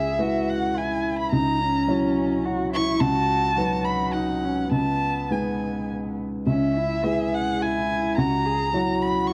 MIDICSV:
0, 0, Header, 1, 4, 480
1, 0, Start_track
1, 0, Key_signature, 4, "minor"
1, 0, Tempo, 562852
1, 1144, Time_signature, 3, 2, 24, 8
1, 3535, Tempo, 581395
1, 5935, Tempo, 563380
1, 7876, End_track
2, 0, Start_track
2, 0, Title_t, "Violin"
2, 0, Program_c, 0, 40
2, 0, Note_on_c, 0, 76, 87
2, 420, Note_on_c, 0, 78, 80
2, 433, Note_off_c, 0, 76, 0
2, 662, Note_on_c, 0, 80, 80
2, 675, Note_off_c, 0, 78, 0
2, 1003, Note_off_c, 0, 80, 0
2, 1008, Note_on_c, 0, 83, 85
2, 1115, Note_off_c, 0, 83, 0
2, 1120, Note_on_c, 0, 82, 110
2, 2065, Note_off_c, 0, 82, 0
2, 2336, Note_on_c, 0, 85, 113
2, 2558, Note_on_c, 0, 81, 127
2, 2571, Note_off_c, 0, 85, 0
2, 3274, Note_on_c, 0, 83, 108
2, 3287, Note_off_c, 0, 81, 0
2, 3519, Note_on_c, 0, 78, 91
2, 3532, Note_off_c, 0, 83, 0
2, 4002, Note_off_c, 0, 78, 0
2, 4010, Note_on_c, 0, 81, 97
2, 4501, Note_on_c, 0, 80, 70
2, 4513, Note_off_c, 0, 81, 0
2, 4976, Note_off_c, 0, 80, 0
2, 5453, Note_on_c, 0, 76, 95
2, 6181, Note_on_c, 0, 78, 97
2, 6194, Note_off_c, 0, 76, 0
2, 6418, Note_on_c, 0, 80, 92
2, 6431, Note_off_c, 0, 78, 0
2, 6884, Note_off_c, 0, 80, 0
2, 6889, Note_on_c, 0, 82, 109
2, 7607, Note_on_c, 0, 83, 109
2, 7620, Note_off_c, 0, 82, 0
2, 7836, Note_off_c, 0, 83, 0
2, 7841, Note_on_c, 0, 85, 115
2, 7876, Note_off_c, 0, 85, 0
2, 7876, End_track
3, 0, Start_track
3, 0, Title_t, "Cello"
3, 0, Program_c, 1, 42
3, 0, Note_on_c, 1, 68, 65
3, 172, Note_on_c, 1, 66, 73
3, 185, Note_off_c, 1, 68, 0
3, 650, Note_on_c, 1, 64, 70
3, 662, Note_off_c, 1, 66, 0
3, 1128, Note_on_c, 1, 63, 73
3, 1141, Note_off_c, 1, 64, 0
3, 1370, Note_on_c, 1, 61, 83
3, 1382, Note_off_c, 1, 63, 0
3, 2091, Note_on_c, 1, 66, 91
3, 2104, Note_off_c, 1, 61, 0
3, 2324, Note_off_c, 1, 66, 0
3, 2329, Note_on_c, 1, 64, 85
3, 2569, Note_on_c, 1, 66, 95
3, 2582, Note_off_c, 1, 64, 0
3, 3025, Note_off_c, 1, 66, 0
3, 3030, Note_on_c, 1, 66, 86
3, 3527, Note_on_c, 1, 63, 81
3, 3539, Note_off_c, 1, 66, 0
3, 3781, Note_on_c, 1, 61, 69
3, 3793, Note_off_c, 1, 63, 0
3, 4012, Note_off_c, 1, 61, 0
3, 4017, Note_on_c, 1, 59, 66
3, 5195, Note_off_c, 1, 59, 0
3, 5465, Note_on_c, 1, 61, 68
3, 5702, Note_on_c, 1, 64, 74
3, 5714, Note_off_c, 1, 61, 0
3, 5936, Note_on_c, 1, 68, 76
3, 5949, Note_off_c, 1, 64, 0
3, 6418, Note_on_c, 1, 64, 80
3, 6430, Note_off_c, 1, 68, 0
3, 6897, Note_on_c, 1, 66, 76
3, 6910, Note_off_c, 1, 64, 0
3, 7129, Note_on_c, 1, 68, 77
3, 7142, Note_off_c, 1, 66, 0
3, 7373, Note_off_c, 1, 68, 0
3, 7380, Note_on_c, 1, 66, 81
3, 7870, Note_off_c, 1, 66, 0
3, 7876, End_track
4, 0, Start_track
4, 0, Title_t, "Felt piano"
4, 0, Program_c, 2, 0
4, 0, Control_c, 2, 64, 127
4, 0, Note_on_c, 2, 37, 66
4, 161, Note_on_c, 2, 64, 47
4, 162, Note_on_c, 2, 71, 53
4, 163, Note_off_c, 2, 37, 0
4, 163, Note_on_c, 2, 56, 45
4, 1100, Note_off_c, 2, 64, 0
4, 1101, Note_off_c, 2, 56, 0
4, 1101, Note_off_c, 2, 71, 0
4, 1127, Note_on_c, 2, 37, 71
4, 1159, Control_c, 2, 64, 0
4, 1301, Control_c, 2, 64, 127
4, 1597, Note_off_c, 2, 37, 0
4, 1601, Note_on_c, 2, 54, 63
4, 1603, Note_on_c, 2, 64, 58
4, 1608, Note_on_c, 2, 73, 65
4, 2533, Note_off_c, 2, 54, 0
4, 2534, Note_off_c, 2, 64, 0
4, 2536, Note_off_c, 2, 73, 0
4, 2562, Note_on_c, 2, 37, 91
4, 2593, Control_c, 2, 64, 0
4, 2707, Control_c, 2, 64, 127
4, 3031, Note_off_c, 2, 37, 0
4, 3043, Note_on_c, 2, 54, 64
4, 3050, Note_on_c, 2, 63, 61
4, 3054, Note_on_c, 2, 71, 72
4, 3971, Note_off_c, 2, 54, 0
4, 3974, Note_off_c, 2, 63, 0
4, 3976, Note_off_c, 2, 71, 0
4, 4002, Note_on_c, 2, 37, 63
4, 4024, Control_c, 2, 64, 0
4, 4153, Control_c, 2, 64, 127
4, 4473, Note_off_c, 2, 37, 0
4, 4492, Note_on_c, 2, 63, 45
4, 4494, Note_on_c, 2, 56, 47
4, 4499, Note_on_c, 2, 71, 52
4, 5425, Note_off_c, 2, 63, 0
4, 5426, Note_off_c, 2, 56, 0
4, 5428, Note_off_c, 2, 71, 0
4, 5450, Note_on_c, 2, 37, 66
4, 5474, Control_c, 2, 64, 0
4, 5623, Control_c, 2, 64, 127
4, 5914, Note_on_c, 2, 56, 49
4, 5915, Note_off_c, 2, 37, 0
4, 5917, Note_on_c, 2, 64, 50
4, 5921, Note_on_c, 2, 71, 52
4, 6857, Note_off_c, 2, 56, 0
4, 6858, Note_off_c, 2, 64, 0
4, 6860, Note_off_c, 2, 71, 0
4, 6893, Note_on_c, 2, 37, 75
4, 6917, Control_c, 2, 64, 0
4, 7071, Control_c, 2, 64, 127
4, 7360, Note_off_c, 2, 37, 0
4, 7366, Note_on_c, 2, 54, 56
4, 7370, Note_on_c, 2, 64, 55
4, 7374, Note_on_c, 2, 73, 59
4, 7876, Note_off_c, 2, 54, 0
4, 7876, Note_off_c, 2, 64, 0
4, 7876, Note_off_c, 2, 73, 0
4, 7876, End_track
0, 0, End_of_file